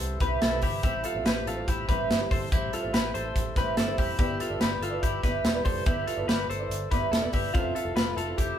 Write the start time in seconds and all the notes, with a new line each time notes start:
Already playing: G3 C4 E4 A4 B4 C5
0.00 C2
0.20 C2 G3 C4 E4 G4 B4, kick, closed hi-hat
0.42 B1 E4 A4, snare, closed hi-hat
0.52 C3 E3 G3 C4 E4 B4
0.62 G1 E4 G4, kick, open hi-hat
0.83 A1 G3 C4 E4 G4 C5, kick, closed hi-hat
1.04 F4 A4, closed hi-hat
1.15 A1 G3 C4 E4 C5
1.25 A1 G4 B4, snare, closed hi-hat
1.46 A1 F4 A4, closed hi-hat
1.56 G3 C4 E4 C5
1.68 A1 E4 G4, kick, closed hi-hat
1.88 A1 G3 C4 E4 G4 B4 C5, kick, closed hi-hat
2.10 G1, snare, closed hi-hat
2.20 A2 E3 G3 C4 E4 C5
2.31 G1 A4 C5, kick, open hi-hat
2.51 A1 G3 C4 E4 G4 C5, kick, closed hi-hat
2.73 F4 A4, closed hi-hat
2.83 A1 G3 C4 E4 C5
2.94 A1 G4 B4, snare, closed hi-hat
3.14 A1 A4 C5, closed hi-hat
3.24 G3 C4 E4 C5
3.36 A1, kick, closed hi-hat
3.54 A1 G3 C4 E4 G4 B4 C5, kick, snare, closed hi-hat
3.77 G1 E4 A4, snare, closed hi-hat
3.87 A2 E3 G3 C4 E4 C5
3.98 F1 E4 G4, kick, open hi-hat
4.18 G1 B3 E4 G4 B4 D5 E5, kick, closed hi-hat
4.40 F4 A4, closed hi-hat
4.50 G1 E4 B4 D5
4.60 G1 G4 B4, snare, closed hi-hat
4.80 G1 F4 A4, closed hi-hat
4.91 E4 B4 D5
5.03 G1 E4 G4, kick, closed hi-hat
5.22 G1 B3 E4 G4 B4 D5, kick, snare, closed hi-hat
5.44 E1, snare, closed hi-hat
5.54 G3 B3 E4 B4 D5
5.65 F1 A4 C5, kick, open hi-hat
5.86 G1 B3 E4 G4 B4 D5, kick, closed hi-hat
6.07 F4 A4, closed hi-hat
6.17 G1 E4 B4 D5
6.28 G1 G4 B4, snare, closed hi-hat
6.48 G1 A4 C5, closed hi-hat
6.59 E4 B4 D5
6.70 G1, closed hi-hat
6.91 G1 B3 E4 G4 B4 D5, kick, snare, closed hi-hat
7.11 E1 E4 A4, snare, closed hi-hat
7.22 G3 B3 E4 B4 D5
7.33 G1 E4 G4, kick, open hi-hat
7.54 F1 F3 C4 E4 F4 A4 E5, kick, closed hi-hat
7.75 F4 A4, closed hi-hat
7.85 F1 C4 E4 A4
7.95 F1 F4 B4, snare, closed hi-hat
8.17 F1 F4 A4, closed hi-hat
8.27 C4 E4 A4
8.38 F1 E4 G4, kick, closed hi-hat